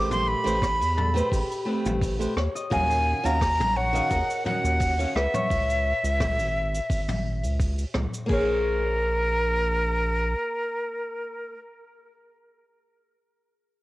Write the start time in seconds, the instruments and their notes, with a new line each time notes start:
Already playing: analog synth bass A1, nylon-string guitar A3 G4 B4 C5, harp G4 A#4 C5, flute D6
0.11 flute C6, mid tom, open hi-hat, cabasa
0.28 flute B5
0.44 analog synth bass A1, nylon-string guitar A3 G4 B4 C5, open hi-hat, cabasa
0.62 kick, cross-stick, open hi-hat, cabasa
0.81 analog synth bass E2, open hi-hat, cabasa
0.97 harp A4, mid tom
1.14 nylon-string guitar A3 G4 B4 C5, harp B4, open hi-hat, cabasa
1.32 analog synth bass A1, harp G4, kick, open hi-hat, cabasa
1.51 open hi-hat, cabasa
1.65 nylon-string guitar A3 C4 G4 B4
1.85 analog synth bass A1, mid tom, cabasa
2.01 kick, open hi-hat, cabasa
2.19 nylon-string guitar A3 G4 B4 C5, open hi-hat, cabasa
2.36 analog synth bass D#2, harp C#5, cross-stick
2.55 harp D#5, cabasa
2.70 analog synth bass D#2, nylon-string guitar D#3 C#4 F#4 F5, harp A#4, flute G#5, kick, mid tom, open hi-hat, cabasa
2.90 open hi-hat, cabasa
3.23 analog synth bass D#2, nylon-string guitar D#3 C#4 F#4 F5, flute A#5, open hi-hat, cabasa
3.41 kick, cross-stick, open hi-hat, cabasa
3.60 analog synth bass A#1, mid tom, open hi-hat, cabasa
3.76 harp C#5, flute F#5
3.93 nylon-string guitar D#3 C#4 F#4 F5, harp D#5, open hi-hat, cabasa
4.11 analog synth bass D#2, harp A#4, kick, open hi-hat, cabasa
4.30 open hi-hat, cabasa
4.44 nylon-string guitar D#3 C#4 F#4 F#5, flute F#5, mid tom
4.64 analog synth bass D#2, cabasa
4.80 kick, open hi-hat, cabasa
4.98 nylon-string guitar D#3 C#4 F#4 F5, open hi-hat, cabasa
5.15 analog synth bass C#2, harp B4, flute E5, cross-stick
5.34 harp C#5, mid tom, cabasa
5.50 analog synth bass C#2, kick, open hi-hat, cabasa
5.69 open hi-hat, cabasa
6.03 analog synth bass C#2, open hi-hat, cabasa
6.20 kick, cross-stick, mid tom, open hi-hat, cabasa
6.38 analog synth bass G#1, open hi-hat, cabasa
6.74 open hi-hat, cabasa
6.90 analog synth bass G#1, kick, open hi-hat, cabasa
7.08 mid tom, open hi-hat, cabasa
7.43 analog synth bass C#2, open hi-hat, cabasa
7.59 kick, open hi-hat, cabasa
7.78 open hi-hat, cabasa
7.94 analog synth bass C#2, cross-stick, mid tom
8.14 cabasa
8.26 analog synth bass A#1, nylon-string guitar A#3 G#4, harp G#4, kick, crash
8.30 flute A#4, nylon-string guitar C5 C#5